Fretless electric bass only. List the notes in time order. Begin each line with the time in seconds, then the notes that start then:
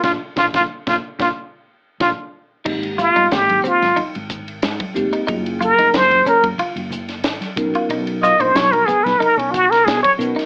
0.04 A#1
0.37 A#1
0.54 A#1
0.87 A#1
1.20 A#1
2.00 A#1
2.66 G#1
3.16 G1
3.32 G#1
3.82 G#1
3.99 muted fretless electric bass stroke
4.16 G#1
4.64 G#2
4.96 F1
5.29 F#1
5.78 F1
5.94 F#1
6.44 F#1
6.58 muted fretless electric bass stroke
6.76 F#1
7.23 G#1
7.57 B1
7.89 B1
8.39 A#1
8.55 B1
8.89 muted fretless electric bass stroke
9.06 B1
9.20 muted fretless electric bass stroke
9.37 B1
9.87 B2
10.19 B2